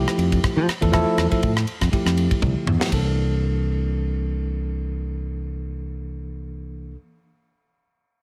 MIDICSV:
0, 0, Header, 1, 5, 480
1, 0, Start_track
1, 0, Tempo, 497512
1, 897, Time_signature, 4, 2, 24, 8
1, 7934, End_track
2, 0, Start_track
2, 0, Title_t, "Tine electric piano"
2, 0, Program_c, 0, 4
2, 0, Note_on_c, 0, 53, 68
2, 0, Note_on_c, 0, 57, 57
2, 0, Note_on_c, 0, 64, 61
2, 0, Note_on_c, 0, 67, 79
2, 662, Note_off_c, 0, 53, 0
2, 663, Note_off_c, 0, 57, 0
2, 667, Note_off_c, 0, 64, 0
2, 668, Note_off_c, 0, 67, 0
2, 778, Note_on_c, 0, 53, 70
2, 784, Note_on_c, 0, 57, 61
2, 789, Note_on_c, 0, 64, 63
2, 795, Note_on_c, 0, 69, 72
2, 878, Note_off_c, 0, 53, 0
2, 881, Note_off_c, 0, 57, 0
2, 883, Note_off_c, 0, 64, 0
2, 887, Note_off_c, 0, 69, 0
2, 888, Note_on_c, 0, 53, 79
2, 894, Note_on_c, 0, 57, 73
2, 898, Note_on_c, 0, 64, 79
2, 902, Note_on_c, 0, 69, 93
2, 1208, Note_off_c, 0, 53, 0
2, 1211, Note_off_c, 0, 57, 0
2, 1213, Note_off_c, 0, 64, 0
2, 1215, Note_off_c, 0, 69, 0
2, 1253, Note_on_c, 0, 53, 69
2, 1259, Note_on_c, 0, 57, 60
2, 1267, Note_on_c, 0, 64, 64
2, 1272, Note_on_c, 0, 69, 73
2, 1464, Note_off_c, 0, 53, 0
2, 1467, Note_off_c, 0, 57, 0
2, 1471, Note_off_c, 0, 64, 0
2, 1473, Note_off_c, 0, 69, 0
2, 1504, Note_on_c, 0, 64, 25
2, 1524, Note_on_c, 0, 69, 27
2, 1558, Note_off_c, 0, 64, 0
2, 1568, Note_off_c, 0, 69, 0
2, 1846, Note_on_c, 0, 53, 59
2, 1849, Note_on_c, 0, 57, 54
2, 1856, Note_on_c, 0, 64, 55
2, 1864, Note_on_c, 0, 67, 65
2, 2576, Note_off_c, 0, 53, 0
2, 2577, Note_off_c, 0, 57, 0
2, 2581, Note_off_c, 0, 64, 0
2, 2585, Note_off_c, 0, 67, 0
2, 2686, Note_on_c, 0, 53, 62
2, 2692, Note_on_c, 0, 57, 54
2, 2697, Note_on_c, 0, 64, 55
2, 2701, Note_on_c, 0, 67, 63
2, 2773, Note_on_c, 0, 52, 61
2, 2791, Note_off_c, 0, 53, 0
2, 2791, Note_on_c, 0, 58, 50
2, 2794, Note_off_c, 0, 57, 0
2, 2797, Note_off_c, 0, 64, 0
2, 2798, Note_off_c, 0, 67, 0
2, 2812, Note_on_c, 0, 62, 49
2, 2833, Note_on_c, 0, 69, 60
2, 6663, Note_off_c, 0, 52, 0
2, 6681, Note_off_c, 0, 58, 0
2, 6702, Note_off_c, 0, 62, 0
2, 6723, Note_off_c, 0, 69, 0
2, 7934, End_track
3, 0, Start_track
3, 0, Title_t, "Fingered electric bass"
3, 0, Program_c, 1, 33
3, 171, Note_on_c, 1, 41, 72
3, 377, Note_off_c, 1, 41, 0
3, 545, Note_on_c, 1, 53, 69
3, 639, Note_off_c, 1, 53, 0
3, 787, Note_on_c, 1, 40, 67
3, 989, Note_off_c, 1, 40, 0
3, 1133, Note_on_c, 1, 40, 62
3, 1244, Note_off_c, 1, 40, 0
3, 1378, Note_on_c, 1, 45, 75
3, 1580, Note_off_c, 1, 45, 0
3, 1745, Note_on_c, 1, 41, 60
3, 1839, Note_off_c, 1, 41, 0
3, 1982, Note_on_c, 1, 41, 66
3, 2186, Note_off_c, 1, 41, 0
3, 2335, Note_on_c, 1, 36, 70
3, 2444, Note_off_c, 1, 36, 0
3, 2569, Note_on_c, 1, 40, 65
3, 2681, Note_off_c, 1, 40, 0
3, 2814, Note_on_c, 1, 36, 69
3, 6704, Note_off_c, 1, 36, 0
3, 7934, End_track
4, 0, Start_track
4, 0, Title_t, "Muted fingered electric bass strokes"
4, 652, Note_on_c, 9, 29, 28
4, 748, Note_off_c, 9, 29, 0
4, 2458, Note_on_c, 9, 29, 28
4, 2554, Note_off_c, 9, 29, 0
4, 7934, End_track
5, 0, Start_track
5, 0, Title_t, "Drums"
5, 76, Note_on_c, 9, 37, 68
5, 172, Note_off_c, 9, 37, 0
5, 181, Note_on_c, 9, 51, 48
5, 277, Note_off_c, 9, 51, 0
5, 311, Note_on_c, 9, 51, 48
5, 313, Note_on_c, 9, 36, 66
5, 407, Note_off_c, 9, 51, 0
5, 409, Note_off_c, 9, 36, 0
5, 422, Note_on_c, 9, 51, 47
5, 424, Note_on_c, 9, 36, 97
5, 425, Note_on_c, 9, 37, 73
5, 518, Note_off_c, 9, 51, 0
5, 521, Note_off_c, 9, 36, 0
5, 522, Note_off_c, 9, 37, 0
5, 663, Note_on_c, 9, 51, 48
5, 667, Note_on_c, 9, 37, 65
5, 759, Note_off_c, 9, 51, 0
5, 763, Note_off_c, 9, 37, 0
5, 792, Note_on_c, 9, 51, 43
5, 793, Note_on_c, 9, 36, 65
5, 888, Note_off_c, 9, 51, 0
5, 890, Note_off_c, 9, 36, 0
5, 899, Note_on_c, 9, 51, 49
5, 903, Note_on_c, 9, 37, 71
5, 904, Note_on_c, 9, 36, 76
5, 996, Note_off_c, 9, 51, 0
5, 1000, Note_off_c, 9, 36, 0
5, 1000, Note_off_c, 9, 37, 0
5, 1137, Note_on_c, 9, 51, 45
5, 1141, Note_on_c, 9, 37, 67
5, 1234, Note_off_c, 9, 51, 0
5, 1238, Note_off_c, 9, 37, 0
5, 1268, Note_on_c, 9, 51, 44
5, 1272, Note_on_c, 9, 36, 61
5, 1365, Note_off_c, 9, 51, 0
5, 1368, Note_off_c, 9, 36, 0
5, 1377, Note_on_c, 9, 51, 48
5, 1382, Note_on_c, 9, 36, 91
5, 1474, Note_off_c, 9, 51, 0
5, 1479, Note_off_c, 9, 36, 0
5, 1513, Note_on_c, 9, 37, 62
5, 1609, Note_off_c, 9, 37, 0
5, 1614, Note_on_c, 9, 51, 44
5, 1710, Note_off_c, 9, 51, 0
5, 1749, Note_on_c, 9, 51, 41
5, 1750, Note_on_c, 9, 36, 62
5, 1753, Note_on_c, 9, 37, 59
5, 1846, Note_off_c, 9, 51, 0
5, 1847, Note_off_c, 9, 36, 0
5, 1849, Note_off_c, 9, 37, 0
5, 1862, Note_on_c, 9, 36, 68
5, 1862, Note_on_c, 9, 51, 47
5, 1958, Note_off_c, 9, 36, 0
5, 1959, Note_off_c, 9, 51, 0
5, 1992, Note_on_c, 9, 37, 62
5, 2089, Note_off_c, 9, 37, 0
5, 2097, Note_on_c, 9, 51, 49
5, 2194, Note_off_c, 9, 51, 0
5, 2229, Note_on_c, 9, 51, 48
5, 2230, Note_on_c, 9, 36, 67
5, 2325, Note_off_c, 9, 51, 0
5, 2326, Note_off_c, 9, 36, 0
5, 2337, Note_on_c, 9, 48, 45
5, 2340, Note_on_c, 9, 36, 87
5, 2433, Note_off_c, 9, 48, 0
5, 2436, Note_off_c, 9, 36, 0
5, 2579, Note_on_c, 9, 45, 65
5, 2675, Note_off_c, 9, 45, 0
5, 2713, Note_on_c, 9, 38, 62
5, 2809, Note_off_c, 9, 38, 0
5, 2818, Note_on_c, 9, 36, 58
5, 2818, Note_on_c, 9, 51, 70
5, 2914, Note_off_c, 9, 51, 0
5, 2915, Note_off_c, 9, 36, 0
5, 7934, End_track
0, 0, End_of_file